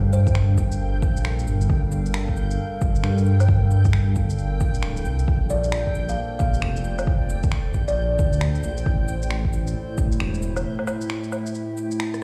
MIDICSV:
0, 0, Header, 1, 6, 480
1, 0, Start_track
1, 0, Tempo, 447761
1, 1819, Time_signature, 4, 2, 24, 8
1, 13113, End_track
2, 0, Start_track
2, 0, Title_t, "Synth texture"
2, 0, Program_c, 0, 99
2, 0, Note_on_c, 0, 79, 86
2, 13113, Note_off_c, 0, 79, 0
2, 13113, End_track
3, 0, Start_track
3, 0, Title_t, "Kalimba"
3, 0, Program_c, 1, 108
3, 139, Note_on_c, 1, 72, 88
3, 619, Note_off_c, 1, 72, 0
3, 5899, Note_on_c, 1, 74, 86
3, 6154, Note_off_c, 1, 74, 0
3, 6532, Note_on_c, 1, 77, 96
3, 6780, Note_off_c, 1, 77, 0
3, 6852, Note_on_c, 1, 77, 94
3, 7336, Note_off_c, 1, 77, 0
3, 8448, Note_on_c, 1, 74, 94
3, 8778, Note_off_c, 1, 74, 0
3, 13113, End_track
4, 0, Start_track
4, 0, Title_t, "Ambient pad"
4, 0, Program_c, 2, 92
4, 0, Note_on_c, 2, 55, 72
4, 0, Note_on_c, 2, 62, 87
4, 0, Note_on_c, 2, 69, 94
4, 0, Note_on_c, 2, 70, 90
4, 0, Note_on_c, 2, 77, 76
4, 5657, Note_off_c, 2, 55, 0
4, 5657, Note_off_c, 2, 70, 0
4, 5658, Note_on_c, 2, 46, 84
4, 5757, Note_on_c, 2, 58, 79
4, 6186, Note_on_c, 2, 74, 87
4, 6344, Note_on_c, 2, 72, 89
4, 6356, Note_off_c, 2, 62, 0
4, 7218, Note_off_c, 2, 77, 0
4, 9497, Note_off_c, 2, 58, 0
4, 9499, Note_off_c, 2, 46, 0
4, 9501, Note_on_c, 2, 45, 75
4, 9843, Note_on_c, 2, 57, 89
4, 9857, Note_on_c, 2, 64, 84
4, 10457, Note_off_c, 2, 74, 0
4, 10828, Note_on_c, 2, 76, 79
4, 11057, Note_off_c, 2, 69, 0
4, 13113, Note_off_c, 2, 45, 0
4, 13113, Note_off_c, 2, 57, 0
4, 13113, Note_off_c, 2, 64, 0
4, 13113, Note_off_c, 2, 72, 0
4, 13113, Note_off_c, 2, 76, 0
4, 13113, End_track
5, 0, Start_track
5, 0, Title_t, "Detuned saw bass"
5, 0, Program_c, 3, 39
5, 0, Note_on_c, 3, 43, 94
5, 605, Note_off_c, 3, 43, 0
5, 618, Note_on_c, 3, 31, 98
5, 1098, Note_on_c, 3, 34, 105
5, 1114, Note_off_c, 3, 31, 0
5, 1567, Note_off_c, 3, 34, 0
5, 1583, Note_on_c, 3, 31, 83
5, 1807, Note_off_c, 3, 31, 0
5, 1820, Note_on_c, 3, 31, 101
5, 2768, Note_off_c, 3, 31, 0
5, 3017, Note_on_c, 3, 31, 86
5, 3244, Note_off_c, 3, 31, 0
5, 3253, Note_on_c, 3, 43, 90
5, 4445, Note_off_c, 3, 43, 0
5, 4458, Note_on_c, 3, 31, 95
5, 4937, Note_on_c, 3, 34, 99
5, 4953, Note_off_c, 3, 31, 0
5, 5171, Note_off_c, 3, 34, 0
5, 5177, Note_on_c, 3, 26, 83
5, 5416, Note_on_c, 3, 36, 84
5, 5433, Note_off_c, 3, 26, 0
5, 5644, Note_off_c, 3, 36, 0
5, 5657, Note_on_c, 3, 34, 97
5, 6607, Note_off_c, 3, 34, 0
5, 6863, Note_on_c, 3, 34, 86
5, 7087, Note_off_c, 3, 34, 0
5, 7099, Note_on_c, 3, 29, 86
5, 8288, Note_off_c, 3, 29, 0
5, 8302, Note_on_c, 3, 34, 99
5, 8780, Note_on_c, 3, 38, 103
5, 8796, Note_off_c, 3, 34, 0
5, 9248, Note_off_c, 3, 38, 0
5, 9261, Note_on_c, 3, 34, 86
5, 9486, Note_off_c, 3, 34, 0
5, 9499, Note_on_c, 3, 33, 98
5, 10448, Note_off_c, 3, 33, 0
5, 10696, Note_on_c, 3, 33, 86
5, 10923, Note_off_c, 3, 33, 0
5, 10937, Note_on_c, 3, 28, 92
5, 11418, Note_off_c, 3, 28, 0
5, 13113, End_track
6, 0, Start_track
6, 0, Title_t, "Drums"
6, 139, Note_on_c, 9, 69, 75
6, 246, Note_off_c, 9, 69, 0
6, 288, Note_on_c, 9, 36, 114
6, 288, Note_on_c, 9, 82, 58
6, 377, Note_on_c, 9, 26, 112
6, 395, Note_off_c, 9, 36, 0
6, 396, Note_off_c, 9, 82, 0
6, 484, Note_off_c, 9, 26, 0
6, 618, Note_on_c, 9, 36, 67
6, 618, Note_on_c, 9, 69, 64
6, 725, Note_off_c, 9, 36, 0
6, 726, Note_off_c, 9, 69, 0
6, 769, Note_on_c, 9, 82, 55
6, 876, Note_off_c, 9, 82, 0
6, 1098, Note_on_c, 9, 36, 116
6, 1099, Note_on_c, 9, 69, 67
6, 1205, Note_off_c, 9, 36, 0
6, 1206, Note_off_c, 9, 69, 0
6, 1251, Note_on_c, 9, 82, 58
6, 1339, Note_on_c, 9, 26, 113
6, 1358, Note_off_c, 9, 82, 0
6, 1446, Note_off_c, 9, 26, 0
6, 1491, Note_on_c, 9, 82, 49
6, 1580, Note_on_c, 9, 69, 61
6, 1599, Note_off_c, 9, 82, 0
6, 1687, Note_off_c, 9, 69, 0
6, 1729, Note_on_c, 9, 82, 59
6, 1819, Note_on_c, 9, 36, 122
6, 1836, Note_off_c, 9, 82, 0
6, 1926, Note_off_c, 9, 36, 0
6, 2056, Note_on_c, 9, 69, 73
6, 2164, Note_off_c, 9, 69, 0
6, 2209, Note_on_c, 9, 82, 57
6, 2295, Note_on_c, 9, 26, 116
6, 2316, Note_off_c, 9, 82, 0
6, 2403, Note_off_c, 9, 26, 0
6, 2449, Note_on_c, 9, 36, 65
6, 2538, Note_on_c, 9, 69, 61
6, 2556, Note_off_c, 9, 36, 0
6, 2645, Note_off_c, 9, 69, 0
6, 2691, Note_on_c, 9, 82, 57
6, 2798, Note_off_c, 9, 82, 0
6, 3017, Note_on_c, 9, 69, 67
6, 3018, Note_on_c, 9, 36, 113
6, 3124, Note_off_c, 9, 69, 0
6, 3125, Note_off_c, 9, 36, 0
6, 3166, Note_on_c, 9, 82, 53
6, 3255, Note_on_c, 9, 26, 108
6, 3273, Note_off_c, 9, 82, 0
6, 3363, Note_off_c, 9, 26, 0
6, 3409, Note_on_c, 9, 82, 49
6, 3496, Note_on_c, 9, 69, 58
6, 3516, Note_off_c, 9, 82, 0
6, 3603, Note_off_c, 9, 69, 0
6, 3647, Note_on_c, 9, 77, 50
6, 3647, Note_on_c, 9, 82, 57
6, 3736, Note_on_c, 9, 36, 116
6, 3754, Note_off_c, 9, 77, 0
6, 3754, Note_off_c, 9, 82, 0
6, 3843, Note_off_c, 9, 36, 0
6, 3976, Note_on_c, 9, 69, 72
6, 4083, Note_off_c, 9, 69, 0
6, 4125, Note_on_c, 9, 82, 56
6, 4129, Note_on_c, 9, 36, 113
6, 4215, Note_on_c, 9, 26, 114
6, 4232, Note_off_c, 9, 82, 0
6, 4236, Note_off_c, 9, 36, 0
6, 4323, Note_off_c, 9, 26, 0
6, 4456, Note_on_c, 9, 69, 63
6, 4459, Note_on_c, 9, 36, 66
6, 4563, Note_off_c, 9, 69, 0
6, 4566, Note_off_c, 9, 36, 0
6, 4608, Note_on_c, 9, 82, 53
6, 4698, Note_off_c, 9, 82, 0
6, 4698, Note_on_c, 9, 82, 32
6, 4805, Note_off_c, 9, 82, 0
6, 4936, Note_on_c, 9, 69, 69
6, 4938, Note_on_c, 9, 36, 109
6, 5043, Note_off_c, 9, 69, 0
6, 5046, Note_off_c, 9, 36, 0
6, 5086, Note_on_c, 9, 82, 54
6, 5173, Note_on_c, 9, 26, 117
6, 5193, Note_off_c, 9, 82, 0
6, 5281, Note_off_c, 9, 26, 0
6, 5323, Note_on_c, 9, 82, 47
6, 5415, Note_on_c, 9, 69, 59
6, 5430, Note_off_c, 9, 82, 0
6, 5522, Note_off_c, 9, 69, 0
6, 5564, Note_on_c, 9, 82, 54
6, 5659, Note_on_c, 9, 36, 113
6, 5672, Note_off_c, 9, 82, 0
6, 5767, Note_off_c, 9, 36, 0
6, 5894, Note_on_c, 9, 69, 77
6, 6001, Note_off_c, 9, 69, 0
6, 6046, Note_on_c, 9, 82, 52
6, 6134, Note_on_c, 9, 26, 111
6, 6153, Note_off_c, 9, 82, 0
6, 6241, Note_off_c, 9, 26, 0
6, 6292, Note_on_c, 9, 36, 60
6, 6377, Note_on_c, 9, 69, 68
6, 6399, Note_off_c, 9, 36, 0
6, 6485, Note_off_c, 9, 69, 0
6, 6528, Note_on_c, 9, 82, 52
6, 6635, Note_off_c, 9, 82, 0
6, 6859, Note_on_c, 9, 69, 69
6, 6861, Note_on_c, 9, 36, 104
6, 6966, Note_off_c, 9, 69, 0
6, 6968, Note_off_c, 9, 36, 0
6, 7009, Note_on_c, 9, 82, 51
6, 7098, Note_on_c, 9, 26, 111
6, 7116, Note_off_c, 9, 82, 0
6, 7206, Note_off_c, 9, 26, 0
6, 7251, Note_on_c, 9, 82, 45
6, 7338, Note_on_c, 9, 69, 64
6, 7358, Note_off_c, 9, 82, 0
6, 7445, Note_off_c, 9, 69, 0
6, 7490, Note_on_c, 9, 77, 50
6, 7490, Note_on_c, 9, 82, 52
6, 7582, Note_on_c, 9, 36, 121
6, 7597, Note_off_c, 9, 77, 0
6, 7597, Note_off_c, 9, 82, 0
6, 7689, Note_off_c, 9, 36, 0
6, 7821, Note_on_c, 9, 69, 78
6, 7928, Note_off_c, 9, 69, 0
6, 7968, Note_on_c, 9, 82, 50
6, 7973, Note_on_c, 9, 36, 109
6, 8058, Note_on_c, 9, 26, 111
6, 8075, Note_off_c, 9, 82, 0
6, 8080, Note_off_c, 9, 36, 0
6, 8165, Note_off_c, 9, 26, 0
6, 8297, Note_on_c, 9, 69, 69
6, 8302, Note_on_c, 9, 36, 60
6, 8404, Note_off_c, 9, 69, 0
6, 8409, Note_off_c, 9, 36, 0
6, 8450, Note_on_c, 9, 82, 51
6, 8557, Note_off_c, 9, 82, 0
6, 8779, Note_on_c, 9, 69, 78
6, 8781, Note_on_c, 9, 36, 105
6, 8886, Note_off_c, 9, 69, 0
6, 8888, Note_off_c, 9, 36, 0
6, 8929, Note_on_c, 9, 82, 55
6, 9018, Note_on_c, 9, 26, 106
6, 9036, Note_off_c, 9, 82, 0
6, 9125, Note_off_c, 9, 26, 0
6, 9168, Note_on_c, 9, 82, 43
6, 9257, Note_on_c, 9, 69, 67
6, 9275, Note_off_c, 9, 82, 0
6, 9364, Note_off_c, 9, 69, 0
6, 9408, Note_on_c, 9, 82, 54
6, 9500, Note_on_c, 9, 36, 111
6, 9516, Note_off_c, 9, 82, 0
6, 9607, Note_off_c, 9, 36, 0
6, 9736, Note_on_c, 9, 69, 81
6, 9844, Note_off_c, 9, 69, 0
6, 9888, Note_on_c, 9, 82, 53
6, 9976, Note_on_c, 9, 26, 104
6, 9995, Note_off_c, 9, 82, 0
6, 10083, Note_off_c, 9, 26, 0
6, 10130, Note_on_c, 9, 36, 60
6, 10217, Note_on_c, 9, 69, 70
6, 10237, Note_off_c, 9, 36, 0
6, 10324, Note_off_c, 9, 69, 0
6, 10370, Note_on_c, 9, 82, 56
6, 10477, Note_off_c, 9, 82, 0
6, 10696, Note_on_c, 9, 69, 75
6, 10697, Note_on_c, 9, 36, 102
6, 10803, Note_off_c, 9, 69, 0
6, 10805, Note_off_c, 9, 36, 0
6, 10850, Note_on_c, 9, 82, 56
6, 10938, Note_on_c, 9, 26, 108
6, 10957, Note_off_c, 9, 82, 0
6, 11045, Note_off_c, 9, 26, 0
6, 11087, Note_on_c, 9, 82, 45
6, 11175, Note_on_c, 9, 69, 67
6, 11194, Note_off_c, 9, 82, 0
6, 11282, Note_off_c, 9, 69, 0
6, 11325, Note_on_c, 9, 77, 55
6, 11325, Note_on_c, 9, 82, 55
6, 11433, Note_off_c, 9, 77, 0
6, 11433, Note_off_c, 9, 82, 0
6, 11566, Note_on_c, 9, 77, 37
6, 11657, Note_off_c, 9, 77, 0
6, 11657, Note_on_c, 9, 69, 78
6, 11657, Note_on_c, 9, 77, 67
6, 11764, Note_off_c, 9, 69, 0
6, 11764, Note_off_c, 9, 77, 0
6, 11806, Note_on_c, 9, 82, 54
6, 11897, Note_on_c, 9, 26, 103
6, 11913, Note_off_c, 9, 82, 0
6, 12004, Note_off_c, 9, 26, 0
6, 12046, Note_on_c, 9, 82, 33
6, 12138, Note_on_c, 9, 69, 73
6, 12138, Note_on_c, 9, 77, 40
6, 12153, Note_off_c, 9, 82, 0
6, 12245, Note_off_c, 9, 69, 0
6, 12245, Note_off_c, 9, 77, 0
6, 12289, Note_on_c, 9, 82, 58
6, 12379, Note_off_c, 9, 82, 0
6, 12379, Note_on_c, 9, 82, 32
6, 12486, Note_off_c, 9, 82, 0
6, 12620, Note_on_c, 9, 69, 74
6, 12727, Note_off_c, 9, 69, 0
6, 12771, Note_on_c, 9, 82, 58
6, 12862, Note_on_c, 9, 26, 99
6, 12878, Note_off_c, 9, 82, 0
6, 12970, Note_off_c, 9, 26, 0
6, 13015, Note_on_c, 9, 37, 53
6, 13015, Note_on_c, 9, 82, 46
6, 13113, Note_off_c, 9, 37, 0
6, 13113, Note_off_c, 9, 82, 0
6, 13113, End_track
0, 0, End_of_file